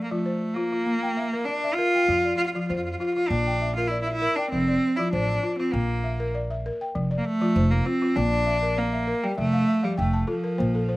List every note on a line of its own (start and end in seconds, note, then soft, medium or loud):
0.00 0.12 A#3 medium
0.00 0.26 D5 medium
0.10 0.42 F3 medium
0.10 0.56 A3 medium
0.10 0.55 F4 medium
0.26 0.73 C5 medium
0.54 1.46 A#3 medium
0.54 0.71 F4 medium
0.72 1.03 F4 medium
0.86 1.17 A#3 medium
1.03 1.48 G5 medium
1.17 1.63 E5 medium
1.33 1.64 A#4 medium
1.45 1.76 D4 medium
1.45 1.94 D5 medium
1.64 2.09 E5 medium
1.75 2.36 F4 loud
1.75 2.09 A#4 medium
1.95 2.25 G5 medium
2.08 2.32 F2 medium
2.08 2.39 F3 medium
2.25 2.70 D5 medium
2.37 2.45 F4 medium
2.46 2.53 F4 medium
2.53 2.86 F3 medium
2.53 2.60 F4 medium
2.53 2.99 F4 medium
2.60 2.67 F4 medium
2.68 2.94 F2 medium
2.68 2.76 F4 medium
2.68 3.16 C5 medium
2.76 2.84 F4 soft
2.85 2.91 F4 medium
2.91 2.98 F4 medium
2.99 3.05 F4 medium
2.99 3.15 F4 medium
3.06 3.14 F4 medium
3.14 3.30 F4 medium
3.14 3.47 F4 medium
3.28 4.25 A#1 medium
3.28 3.61 A#3 medium
3.28 3.75 D4 medium
3.47 3.91 G5 medium
3.61 4.06 E5 medium
3.75 3.89 F4 medium
3.75 4.08 A#4 medium
3.87 4.01 E4 medium
3.87 4.38 D5 medium
4.02 4.12 E4 medium
4.07 4.52 E5 medium
4.12 4.37 E4 medium
4.22 4.52 A#4 medium
4.36 4.50 D4 medium
4.36 4.68 G5 medium
4.50 4.76 F1 medium
4.50 4.82 F3 medium
4.50 4.98 C4 loud
4.68 5.13 D5 medium
4.96 5.29 F3 medium
4.96 5.12 E4 medium
4.96 5.42 F4 medium
5.12 5.36 A1 medium
5.12 5.56 D4 medium
5.12 5.59 C5 medium
5.43 5.58 F4 medium
5.58 5.74 C4 medium
5.58 5.90 F4 medium
5.73 6.68 A#1 medium
5.73 6.34 A#3 medium
5.73 6.04 A#3 medium
6.04 6.49 E5 medium
6.20 6.50 A#4 medium
6.35 6.81 D5 medium
6.50 6.95 E5 medium
6.66 6.96 A#4 medium
6.81 7.11 G5 medium
6.95 7.19 F1 medium
6.95 7.25 F3 medium
7.11 7.56 D5 medium
7.18 7.27 A#3 medium
7.25 7.72 A3 loud
7.41 7.72 F3 medium
7.41 7.85 F4 medium
7.56 7.80 F1 loud
7.56 8.02 C5 medium
7.71 7.87 A#3 medium
7.85 8.18 C4 medium
7.85 8.01 F4 medium
8.02 8.32 F4 medium
8.16 9.11 A#1 medium
8.16 8.46 A#3 medium
8.16 8.79 D4 loud
8.46 8.92 E5 medium
8.62 8.93 A#4 medium
8.77 9.25 A#3 medium
8.77 9.23 D5 medium
8.93 9.36 E5 medium
9.07 9.38 A#4 medium
9.23 9.37 G3 medium
9.23 9.54 G5 medium
9.37 9.62 F1 medium
9.37 9.68 F3 medium
9.37 9.86 A3 loud
9.37 9.66 E5 medium
9.53 9.82 F5 medium
9.68 9.96 E5 medium
9.83 10.14 F3 medium
9.83 9.98 G3 medium
9.83 10.12 F5 medium
9.98 10.22 F1 medium
9.98 10.27 A3 medium
9.98 10.26 G5 medium
10.13 10.42 A5 medium
10.27 10.97 F3 medium
10.27 10.59 F4 medium
10.27 10.56 A4 medium
10.44 10.72 A#4 medium
10.58 10.97 A#1 medium
10.58 10.89 A#3 medium
10.58 10.87 C5 medium
10.75 10.97 A4 medium
10.89 10.97 C5 medium